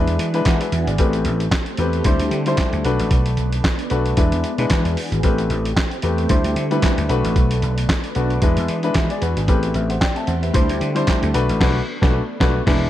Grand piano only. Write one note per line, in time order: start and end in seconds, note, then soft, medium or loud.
0.00 0.25 G#3 medium
0.00 0.25 D4 medium
0.00 0.25 E4 medium
0.00 0.25 B4 loud
0.34 0.69 G#3 medium
0.34 0.69 D4 medium
0.34 0.69 E4 medium
0.34 0.45 B4 loud
0.46 0.60 F#5 medium
0.61 0.86 B4 medium
0.61 0.86 E5 medium
0.87 1.13 G#4 medium
0.87 1.12 D5 medium
0.99 1.43 A3 medium
0.99 1.43 C4 medium
0.99 1.43 G4 medium
0.99 1.43 B4 medium
1.79 2.05 A3 medium
1.79 2.05 C4 medium
1.79 2.05 G4 medium
1.79 2.05 B4 medium
2.05 2.37 G3 medium
2.05 2.38 D4 medium
2.05 2.38 E4 medium
2.05 2.38 C5 loud
2.47 2.81 G3 medium
2.47 2.81 D4 medium
2.47 2.81 E4 medium
2.47 2.81 C5 loud
2.85 3.70 A3 medium
2.85 3.70 D4 loud
2.85 3.70 F#4 medium
2.85 3.71 B4 loud
3.90 4.17 A3 medium
3.90 4.16 D4 medium
3.90 4.17 F#4 medium
3.90 4.16 B4 medium
4.17 4.50 G#3 medium
4.17 4.50 D4 medium
4.17 4.50 E4 medium
4.17 4.50 B4 medium
4.58 4.93 G#3 medium
4.58 4.93 D4 medium
4.58 4.93 E4 medium
4.58 4.94 B4 medium
5.23 5.67 A3 medium
5.23 5.68 C4 medium
5.23 5.68 G4 medium
5.23 5.68 B4 medium
6.03 6.30 A3 medium
6.03 6.30 C4 medium
6.03 6.30 G4 medium
6.03 6.30 B4 medium
6.29 6.62 G3 medium
6.29 6.62 D4 medium
6.29 6.62 E4 medium
6.29 6.62 C5 medium
6.71 7.05 G3 medium
6.71 7.06 D4 medium
6.71 7.06 E4 medium
6.71 7.06 B4 loud
7.09 7.95 A3 loud
7.09 7.95 D4 medium
7.09 7.95 F#4 medium
7.09 7.95 B4 loud
8.15 8.42 A3 medium
8.15 8.41 D4 medium
8.15 8.42 F#4 medium
8.15 8.41 B4 medium
8.42 8.74 G#3 medium
8.42 8.75 D4 medium
8.42 8.75 E4 medium
8.42 8.75 B4 medium
8.83 9.18 G#3 medium
8.83 8.95 D4 medium
8.83 8.95 E4 medium
8.83 8.95 B4 loud
8.96 9.10 B4 medium
9.11 9.22 G#4 medium
9.11 9.22 D5 medium
9.22 9.36 F#4 medium
9.22 9.36 B4 medium
9.37 9.62 D4 soft
9.37 9.62 G#4 medium
9.48 9.92 A3 medium
9.48 9.92 C4 medium
9.48 9.93 G4 medium
9.48 9.74 B4 medium
9.75 9.89 B4 medium
9.75 9.89 E5 medium
9.90 10.01 C5 medium
9.90 10.01 F#5 medium
10.01 10.16 D5 medium
10.01 10.15 G5 medium
10.16 10.27 E5 medium
10.16 10.27 A5 medium
10.27 10.42 C5 medium
10.27 10.42 F#5 medium
10.42 10.68 B4 medium
10.42 10.68 E5 medium
10.54 10.87 G3 medium
10.54 10.87 D4 medium
10.54 10.87 E4 medium
10.54 10.87 C5 loud
10.95 11.30 G3 medium
10.95 11.30 D4 medium
10.95 11.30 E4 medium
10.95 11.30 C5 loud
11.34 11.58 A3 medium
11.34 11.59 D4 medium
11.34 11.59 F#4 medium
11.34 11.59 B4 loud
11.60 11.79 A3 loud
11.60 11.79 D4 medium
11.60 11.79 F#4 medium
11.60 11.79 B4 loud
12.01 12.19 A3 medium
12.01 12.19 D4 medium
12.01 12.19 F#4 medium
12.01 12.20 B4 medium
12.40 12.59 A3 medium
12.40 12.59 D4 medium
12.40 12.59 F#4 loud
12.40 12.59 B4 loud
12.66 12.85 G#3 medium
12.66 12.85 D4 loud
12.66 12.85 E4 medium
12.66 12.86 B4 medium